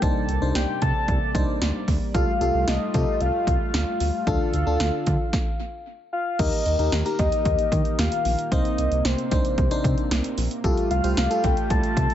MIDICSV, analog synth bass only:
0, 0, Header, 1, 2, 480
1, 0, Start_track
1, 0, Tempo, 530973
1, 20, Time_signature, 4, 2, 24, 8
1, 10976, End_track
2, 0, Start_track
2, 0, Title_t, "Analog synth bass"
2, 0, Program_c, 0, 38
2, 19, Note_on_c, 0, 36, 114
2, 114, Note_off_c, 0, 36, 0
2, 259, Note_on_c, 0, 36, 93
2, 354, Note_off_c, 0, 36, 0
2, 380, Note_on_c, 0, 36, 99
2, 474, Note_off_c, 0, 36, 0
2, 500, Note_on_c, 0, 36, 98
2, 595, Note_off_c, 0, 36, 0
2, 742, Note_on_c, 0, 48, 106
2, 836, Note_off_c, 0, 48, 0
2, 979, Note_on_c, 0, 36, 113
2, 1074, Note_off_c, 0, 36, 0
2, 1218, Note_on_c, 0, 36, 100
2, 1313, Note_off_c, 0, 36, 0
2, 1459, Note_on_c, 0, 38, 98
2, 1554, Note_off_c, 0, 38, 0
2, 1699, Note_on_c, 0, 38, 89
2, 1794, Note_off_c, 0, 38, 0
2, 1939, Note_on_c, 0, 36, 102
2, 2034, Note_off_c, 0, 36, 0
2, 2179, Note_on_c, 0, 36, 98
2, 2274, Note_off_c, 0, 36, 0
2, 2299, Note_on_c, 0, 36, 97
2, 2394, Note_off_c, 0, 36, 0
2, 2419, Note_on_c, 0, 36, 99
2, 2514, Note_off_c, 0, 36, 0
2, 2662, Note_on_c, 0, 48, 109
2, 2756, Note_off_c, 0, 48, 0
2, 2899, Note_on_c, 0, 36, 109
2, 2994, Note_off_c, 0, 36, 0
2, 3138, Note_on_c, 0, 36, 89
2, 3233, Note_off_c, 0, 36, 0
2, 3381, Note_on_c, 0, 38, 100
2, 3475, Note_off_c, 0, 38, 0
2, 3620, Note_on_c, 0, 38, 97
2, 3715, Note_off_c, 0, 38, 0
2, 3859, Note_on_c, 0, 38, 101
2, 3954, Note_off_c, 0, 38, 0
2, 4100, Note_on_c, 0, 38, 98
2, 4195, Note_off_c, 0, 38, 0
2, 4220, Note_on_c, 0, 38, 97
2, 4315, Note_off_c, 0, 38, 0
2, 4340, Note_on_c, 0, 38, 108
2, 4435, Note_off_c, 0, 38, 0
2, 4582, Note_on_c, 0, 50, 108
2, 4676, Note_off_c, 0, 50, 0
2, 5779, Note_on_c, 0, 39, 110
2, 5874, Note_off_c, 0, 39, 0
2, 6020, Note_on_c, 0, 39, 93
2, 6115, Note_off_c, 0, 39, 0
2, 6139, Note_on_c, 0, 39, 95
2, 6234, Note_off_c, 0, 39, 0
2, 6260, Note_on_c, 0, 39, 113
2, 6354, Note_off_c, 0, 39, 0
2, 6502, Note_on_c, 0, 39, 109
2, 6596, Note_off_c, 0, 39, 0
2, 6739, Note_on_c, 0, 39, 102
2, 6834, Note_off_c, 0, 39, 0
2, 6978, Note_on_c, 0, 51, 103
2, 7073, Note_off_c, 0, 51, 0
2, 7221, Note_on_c, 0, 39, 104
2, 7315, Note_off_c, 0, 39, 0
2, 7460, Note_on_c, 0, 34, 93
2, 7555, Note_off_c, 0, 34, 0
2, 7700, Note_on_c, 0, 36, 99
2, 7794, Note_off_c, 0, 36, 0
2, 7939, Note_on_c, 0, 36, 94
2, 8034, Note_off_c, 0, 36, 0
2, 8059, Note_on_c, 0, 36, 100
2, 8154, Note_off_c, 0, 36, 0
2, 8179, Note_on_c, 0, 36, 100
2, 8274, Note_off_c, 0, 36, 0
2, 8423, Note_on_c, 0, 36, 99
2, 8517, Note_off_c, 0, 36, 0
2, 8660, Note_on_c, 0, 36, 107
2, 8754, Note_off_c, 0, 36, 0
2, 8898, Note_on_c, 0, 48, 101
2, 8994, Note_off_c, 0, 48, 0
2, 9139, Note_on_c, 0, 36, 101
2, 9234, Note_off_c, 0, 36, 0
2, 9380, Note_on_c, 0, 34, 103
2, 9475, Note_off_c, 0, 34, 0
2, 9620, Note_on_c, 0, 36, 109
2, 9715, Note_off_c, 0, 36, 0
2, 9860, Note_on_c, 0, 36, 97
2, 9955, Note_off_c, 0, 36, 0
2, 9980, Note_on_c, 0, 36, 102
2, 10075, Note_off_c, 0, 36, 0
2, 10100, Note_on_c, 0, 36, 108
2, 10195, Note_off_c, 0, 36, 0
2, 10342, Note_on_c, 0, 36, 112
2, 10436, Note_off_c, 0, 36, 0
2, 10579, Note_on_c, 0, 36, 105
2, 10674, Note_off_c, 0, 36, 0
2, 10818, Note_on_c, 0, 48, 102
2, 10914, Note_off_c, 0, 48, 0
2, 10976, End_track
0, 0, End_of_file